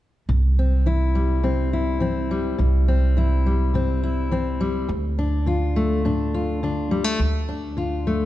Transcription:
0.29 2.55 C2 medium
0.29 0.81 C3 medium
0.59 1.43 C4 soft
0.86 1.38 E3 soft
0.86 1.72 E4 soft
1.15 2.30 G3 soft
1.43 1.95 C3 soft
1.43 2.00 C4 soft
1.73 3.17 E4 soft
2.00 2.53 E3 medium
2.00 2.55 C4 soft
2.31 3.45 G3 soft
2.58 4.85 C2 medium
2.58 3.10 C3 medium
2.88 3.74 C4 soft
3.17 3.68 E3 soft
3.17 4.02 E4 soft
3.46 4.59 G3 soft
3.74 4.26 C3 soft
3.74 4.31 C4 medium
4.03 4.89 E4 soft
4.31 4.83 E3 medium
4.31 4.86 C4 medium
4.61 4.89 G3 medium
4.88 5.41 D2 medium
4.88 7.16 D2 medium
5.19 6.05 D4 soft
5.46 5.98 D3 soft
5.46 6.33 F4 soft
5.76 6.91 A3 soft
6.05 6.56 A2 medium
6.05 6.63 D4 soft
6.34 7.17 F4 medium
6.63 7.14 D3 soft
6.63 7.17 D4 soft
6.91 7.04 G3 soft
7.04 7.19 A3 soft
7.19 7.71 D2 medium
7.19 8.25 D2 medium
7.49 8.25 D4 soft
7.77 8.25 D3 medium
7.77 8.25 F4 soft
8.07 8.25 A3 soft

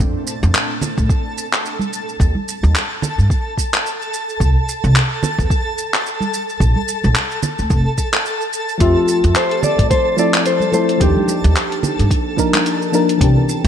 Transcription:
0.00 0.12 F2 medium
0.00 13.68 A4 medium
0.00 13.68 A5 medium
0.00 shaker soft
0.27 shaker medium
0.43 0.52 F2 medium
0.43 shaker soft
0.55 clap medium
0.55 shaker soft
0.81 low conga medium
0.81 shaker medium
0.98 1.07 A2 medium
0.98 kick loud
0.98 shaker soft
1.09 kick loud
1.09 shaker soft
1.38 shaker medium
1.53 clap medium
1.53 shaker soft
1.66 shaker soft
1.79 high conga medium
1.79 shaker soft
1.93 shaker medium
2.09 shaker soft
2.20 2.32 D#2 medium
2.20 kick loud
2.20 shaker soft
2.35 high conga medium
2.48 shaker medium
2.63 2.73 D#2 medium
2.63 high conga medium
2.63 shaker soft
2.75 clap medium
2.75 shaker soft
3.02 low conga medium
3.02 shaker medium
3.18 3.28 G2 medium
3.18 shaker soft
3.30 kick loud
3.30 shaker soft
3.58 kick medium
3.58 shaker medium
3.74 clap medium
3.74 shaker soft
3.86 shaker soft
4.02 shaker soft
4.14 shaker medium
4.29 shaker soft
4.40 4.53 C2 medium
4.40 kick loud
4.40 shaker soft
4.69 shaker medium
4.84 4.93 C2 medium
4.84 shaker soft
4.96 clap medium
4.96 shaker soft
5.23 low conga loud
5.23 shaker medium
5.38 5.48 E2 medium
5.38 kick loud
5.38 shaker soft
5.50 kick loud
5.50 shaker soft
5.78 shaker medium
5.94 clap medium
5.94 shaker soft
6.06 shaker soft
6.21 high conga medium
6.21 shaker soft
6.34 shaker medium
6.49 shaker soft
6.60 6.73 A#1 medium
6.60 kick loud
6.60 shaker soft
6.76 high conga medium
6.88 shaker medium
7.04 7.13 A#1 medium
7.04 high conga medium
7.04 shaker soft
7.15 clap medium
7.15 shaker soft
7.31 shaker soft
7.43 low conga medium
7.43 shaker medium
7.59 7.72 D2 medium
7.59 shaker soft
7.70 7.83 F1 medium
7.70 kick loud
7.70 shaker soft
7.98 kick medium
7.98 shaker medium
8.14 clap medium
8.14 shaker soft
8.26 shaker soft
8.41 shaker soft
8.53 shaker medium
8.69 shaker soft
8.78 8.93 F2 medium
8.78 10.14 F3 medium
8.78 10.15 A3 medium
8.78 10.15 C4 medium
8.78 9.32 F4 medium
8.78 kick loud
8.78 closed hi-hat medium
8.78 shaker soft
8.82 10.17 G4 medium
8.82 10.16 E5 medium
9.08 shaker medium
9.24 9.33 F2 medium
9.24 closed hi-hat soft
9.24 shaker soft
9.36 9.64 C5 loud
9.36 clap medium
9.36 closed hi-hat medium
9.36 shaker soft
9.51 closed hi-hat soft
9.63 9.90 D5 loud
9.63 low conga medium
9.63 shaker medium
9.79 9.88 A2 medium
9.79 kick medium
9.79 closed hi-hat soft
9.79 shaker soft
9.90 10.16 C5 loud
9.90 kick loud
9.90 closed hi-hat soft
9.90 muted conga medium
9.90 shaker soft
10.17 10.70 F3 medium
10.17 10.70 A3 medium
10.17 10.70 C4 medium
10.17 10.71 E4 medium
10.17 10.71 A4 loud
10.17 10.46 D5 medium
10.17 shaker medium
10.34 clap medium
10.34 closed hi-hat soft
10.34 shaker soft
10.46 10.73 C5 medium
10.46 closed hi-hat medium
10.46 shaker soft
10.60 high conga medium
10.60 shaker soft
10.72 10.97 F3 medium
10.72 10.98 A3 medium
10.72 10.98 C4 medium
10.72 10.98 E4 medium
10.72 10.99 A4 loud
10.72 11.02 C5 medium
10.72 muted conga soft
10.72 shaker medium
10.89 closed hi-hat soft
10.89 shaker soft
10.98 11.13 D#2 medium
10.98 12.34 F3 medium
10.98 12.35 A#3 medium
10.98 12.35 D4 medium
10.98 kick loud
10.98 closed hi-hat medium
10.98 shaker soft
11.02 12.36 D#4 medium
11.02 12.07 G4 medium
11.02 12.37 G4 medium
11.17 high conga medium
11.28 muted conga medium
11.28 shaker medium
11.44 11.53 D#2 loud
11.44 closed hi-hat soft
11.44 high conga medium
11.44 shaker soft
11.56 clap medium
11.56 closed hi-hat medium
11.56 shaker soft
11.72 closed hi-hat soft
11.83 low conga medium
11.83 shaker medium
11.99 12.08 G2 medium
11.99 closed hi-hat soft
11.99 shaker soft
12.11 kick loud
12.11 closed hi-hat soft
12.11 shaker soft
12.36 12.90 F3 medium
12.36 12.90 A#3 medium
12.36 12.90 D4 medium
12.36 12.91 D#4 medium
12.36 12.91 A#4 loud
12.36 kick medium
12.36 shaker medium
12.53 clap medium
12.53 closed hi-hat soft
12.53 muted conga medium
12.53 shaker soft
12.66 closed hi-hat medium
12.66 shaker soft
12.82 shaker soft
12.92 13.17 F3 medium
12.92 13.18 A#3 medium
12.92 13.18 D4 medium
12.92 13.19 D#4 medium
12.92 13.19 A#4 loud
12.92 shaker medium
13.09 closed hi-hat soft
13.09 shaker soft
13.18 13.33 C2 medium
13.18 13.68 E3 medium
13.18 13.68 B3 medium
13.18 13.68 C4 medium
13.18 kick loud
13.18 closed hi-hat medium
13.18 shaker soft
13.22 13.68 D4 medium
13.22 13.68 G4 medium
13.49 shaker medium
13.64 13.68 C2 loud
13.64 closed hi-hat soft

